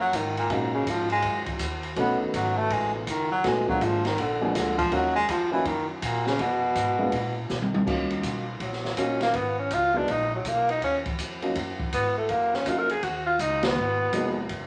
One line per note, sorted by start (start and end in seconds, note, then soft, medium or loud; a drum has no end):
0.00 0.12 F#2 medium
0.00 0.17 F#3 medium
0.13 0.49 G#2 medium
0.13 0.37 D#3 medium
0.13 kick soft
0.13 hi-hat pedal medium
0.13 ride medium
0.37 0.53 A#2 medium
0.37 ride soft
0.49 0.73 G#2 medium
0.49 0.85 A#2 medium
0.49 1.52 F#3 medium
0.49 1.52 A#3 medium
0.49 1.53 C#4 medium
0.49 1.53 D#4 medium
0.49 1.53 F4 medium
0.49 kick soft
0.49 ride medium
0.74 0.91 C#3 medium
0.86 1.22 G#2 medium
0.86 1.11 F3 medium
0.86 kick soft
0.86 hi-hat pedal soft
0.86 ride medium
1.10 1.45 G#3 loud
1.10 ride soft
1.22 1.45 F#2 medium
1.22 kick soft
1.22 ride medium
1.46 muted upright bass stroke soft
1.46 kick medium
1.46 ride medium
1.59 1.96 D#2 medium
1.59 kick soft
1.59 hi-hat pedal medium
1.59 ride medium
1.83 ride soft
1.96 2.19 B1 medium
1.96 2.99 F#3 medium
1.96 3.00 A3 medium
1.96 2.99 B3 medium
1.96 2.21 B3 medium
1.96 3.00 C#4 medium
1.96 3.00 D#4 medium
1.96 kick soft
1.96 ride medium
2.21 2.37 D#3 medium
2.21 muted upright bass stroke soft
2.34 2.70 G#1 medium
2.34 2.59 F#3 medium
2.34 kick soft
2.34 hi-hat pedal medium
2.34 ride medium
2.57 2.74 A3 loud
2.70 3.06 A1 medium
2.70 2.94 G#3 loud
2.70 kick soft
2.70 ride medium
2.95 3.11 B2 soft
3.07 3.43 F#1 medium
3.07 3.31 D#3 medium
3.07 kick soft
3.07 hi-hat pedal medium
3.07 ride medium
3.31 3.49 F#3 loud
3.44 3.80 A#1 medium
3.44 3.66 F#3 medium
3.44 3.68 G#3 loud
3.44 3.66 A3 medium
3.44 3.66 B3 medium
3.44 3.66 D#4 medium
3.44 3.66 F#4 medium
3.44 kick soft
3.44 snare soft
3.44 ride medium
3.67 4.00 F3 medium
3.67 3.85 F#3 medium
3.67 4.00 G#3 medium
3.67 4.00 A#3 medium
3.67 4.00 D4 medium
3.67 4.00 F4 medium
3.67 kick medium
3.81 4.17 G#1 medium
3.81 4.07 F3 medium
3.81 kick soft
3.81 hi-hat pedal soft
3.81 ride medium
4.05 4.22 D#3 medium
4.05 snare soft
4.05 ride soft
4.18 4.54 A#1 medium
4.18 4.42 D3 medium
4.18 kick soft
4.18 ride medium
4.41 4.57 B2 medium
4.41 4.89 F3 medium
4.41 4.89 G#3 medium
4.41 4.89 A#3 medium
4.41 4.89 D4 medium
4.41 4.89 G#4 medium
4.54 4.91 D2 medium
4.54 4.77 D3 medium
4.54 kick soft
4.54 snare soft
4.54 hi-hat pedal medium
4.54 ride medium
4.78 4.95 F3 loud
4.78 kick medium
4.78 ride soft
4.91 5.28 D#2 medium
4.91 5.13 F#3 medium
4.91 5.15 F#3 medium
4.91 5.13 A#3 medium
4.91 5.13 C#4 medium
4.91 5.13 D#4 medium
4.91 5.14 F4 medium
4.91 kick soft
4.91 ride medium
5.15 5.33 G#3 loud
5.28 5.64 F2 medium
5.28 5.52 F3 medium
5.28 kick soft
5.28 hi-hat pedal soft
5.28 ride medium
5.51 5.68 E3 loud
5.51 5.64 F#3 medium
5.51 5.64 A#3 medium
5.51 5.64 C#4 medium
5.51 5.64 D#4 medium
5.51 5.64 F4 medium
5.65 6.01 F#2 medium
5.65 5.88 D#3 medium
5.65 kick soft
5.65 ride medium
5.89 6.05 F#2 soft
6.02 6.38 A#2 loud
6.02 6.28 A#2 medium
6.02 kick soft
6.02 hi-hat pedal medium
6.02 ride medium
6.26 6.42 C#3 loud
6.26 snare soft
6.39 6.75 F2 medium
6.39 7.51 B2 medium
6.39 kick soft
6.39 ride medium
6.75 7.12 G#2 medium
6.75 kick soft
6.75 hi-hat pedal medium
6.75 ride medium
6.99 7.11 G#3 medium
6.99 7.11 A#3 medium
6.99 7.11 B3 medium
6.99 7.12 D4 medium
6.99 7.12 F4 medium
7.12 7.49 A#2 medium
7.12 kick soft
7.12 ride medium
7.49 7.86 B2 medium
7.49 snare soft
7.49 hi-hat pedal medium
7.62 high tom medium
7.74 high tom medium
7.86 8.23 D#2 medium
7.86 8.42 F#3 medium
7.86 8.43 A#3 medium
7.86 8.43 C#4 medium
7.86 8.43 D#4 medium
7.86 8.43 F4 medium
7.86 kick medium
7.86 crash medium
8.10 ride soft
8.23 8.59 B1 loud
8.23 kick soft
8.23 hi-hat pedal medium
8.23 ride medium
8.60 8.96 A#1 medium
8.60 9.00 F#3 medium
8.60 kick soft
8.60 ride medium
8.73 snare soft
8.85 snare soft
8.97 9.33 A#1 medium
8.97 9.34 F#3 medium
8.97 9.35 A#3 medium
8.97 9.35 C#4 medium
8.97 9.22 C#4 loud
8.97 9.35 D#4 medium
8.97 9.35 F4 medium
8.97 kick soft
8.97 hi-hat pedal soft
8.97 ride medium
9.21 9.37 A#3 medium
9.21 snare medium
9.21 ride soft
9.34 9.70 G#1 medium
9.34 9.59 B3 medium
9.34 kick soft
9.34 ride medium
9.59 9.75 C#4 medium
9.71 10.07 C#2 medium
9.71 9.98 F4 medium
9.71 kick soft
9.71 hi-hat pedal medium
9.71 ride medium
9.94 10.06 G#3 medium
9.94 10.07 A#3 medium
9.94 10.07 B3 soft
9.94 10.13 D4 medium
9.94 10.07 D#4 soft
9.94 10.07 F#4 medium
10.08 10.44 A#1 medium
10.08 10.34 D#4 medium
10.08 kick soft
10.08 ride medium
10.35 10.49 F#3 medium
10.45 10.81 B1 medium
10.45 10.72 A#3 medium
10.45 kick soft
10.45 hi-hat pedal soft
10.45 ride medium
10.69 10.83 D#4 loud
10.69 ride soft
10.82 11.18 D#2 medium
10.82 10.98 C#4 medium
10.82 kick soft
10.82 ride medium
11.06 kick medium
11.06 ride soft
11.18 11.55 F2 medium
11.18 hi-hat pedal medium
11.18 ride medium
11.42 11.54 F#3 medium
11.42 11.54 A#3 medium
11.42 11.55 C#4 medium
11.42 11.55 D#4 medium
11.42 11.55 F4 medium
11.42 ride soft
11.55 11.91 F#2 medium
11.55 kick soft
11.55 ride medium
11.80 kick medium
11.92 12.28 G#2 medium
11.92 12.15 B3 medium
11.92 kick soft
11.92 hi-hat pedal medium
11.92 ride medium
12.18 12.32 A3 medium
12.29 12.65 F#2 medium
12.29 12.57 A#3 medium
12.29 kick soft
12.29 ride medium
12.53 12.70 C#4 medium
12.53 snare soft
12.66 13.02 F2 medium
12.66 12.88 F#3 medium
12.66 12.88 A#3 medium
12.66 12.88 C#4 soft
12.66 12.88 D#4 medium
12.66 12.89 F4 medium
12.66 12.81 F4 medium
12.66 kick soft
12.66 hi-hat pedal soft
12.66 ride medium
12.79 12.93 A#4 loud
12.90 13.05 G#4 medium
12.90 ride soft
13.03 13.39 D#2 medium
13.03 13.26 F#4 medium
13.03 kick soft
13.03 ride medium
13.26 13.42 F4 medium
13.39 13.75 C#2 medium
13.39 13.66 D#4 medium
13.39 kick soft
13.39 hi-hat pedal medium
13.39 ride medium
13.63 14.51 B3 medium
13.63 snare medium
13.63 ride medium
13.76 14.12 G#1 medium
14.13 14.49 F1 medium
14.13 14.35 F#3 medium
14.13 14.35 G#3 medium
14.13 14.35 A#3 medium
14.13 14.35 B3 medium
14.13 14.35 D#4 medium
14.13 kick soft
14.13 hi-hat pedal soft
14.13 ride medium
14.49 14.67 F#1 medium
14.49 kick soft
14.49 ride medium